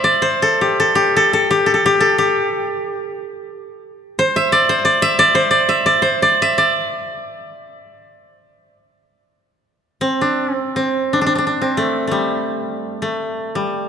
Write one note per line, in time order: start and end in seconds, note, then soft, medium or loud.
0.00 0.22 C5 medium
0.00 1.64 D5 medium
0.00 1.34 E5 medium
0.22 1.94 C5 medium
0.42 0.79 A4 medium
0.61 0.95 G4 medium
0.80 1.16 A4 medium
0.95 1.50 G4 medium
1.16 1.33 A4 medium
1.33 1.66 A4 medium
1.51 1.85 G4 medium
1.66 1.73 A4 medium
1.74 2.00 A4 medium
1.86 2.18 G4 medium
2.00 3.91 A4 medium
2.18 4.22 G4 medium
4.19 4.69 C5 medium
4.36 5.02 E5 medium
4.52 4.84 D5 medium
4.69 5.34 C5 medium
4.85 5.18 D5 medium
5.02 5.68 E5 loud
5.19 5.50 D5 medium
5.35 6.02 C5 medium
5.51 5.85 D5 medium
5.69 6.42 E5 medium
5.86 6.22 D5 medium
6.02 7.74 C5 medium
6.22 6.58 D5 medium
6.42 7.91 E5 medium
6.58 8.80 D5 medium
10.01 10.53 C4 medium
10.21 10.53 D4 medium
10.53 10.76 C4 medium
10.76 11.61 C4 medium
11.13 11.21 D4 medium
11.21 11.26 D4 soft
11.26 11.35 D4 medium
11.35 11.38 D4 soft
11.35 11.46 D4 soft
11.47 13.89 D4 soft
11.62 13.89 C4 medium
11.77 12.07 A3 medium
12.07 13.08 G3 medium
12.07 13.02 A3 soft
13.02 13.89 A3 medium
13.55 13.89 G3 soft